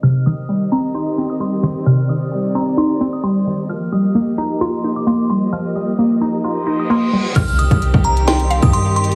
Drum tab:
CC |------------------------------------------------|------------------------------------------------|------------------------------------------------|------------------------------------------------|
HH |------------------------------------------------|------------------------------------------------|------------------------------------------------|------------------------------------------------|
SD |------------------------------------------------|------------------------------------------------|------------------------------------------------|------------------------------------------------|
BD |------------------------------------------------|------------------------------------------------|------------------------------------------------|------------------------------------------------|

CC |x-----------------------------------------------|
HH |x--x--x--x--x-----x--x--x--x--x--x--x-----x-x-x-|
SD |------------------------o-----------------------|
BD |o--------o-----o-----------------o--------------|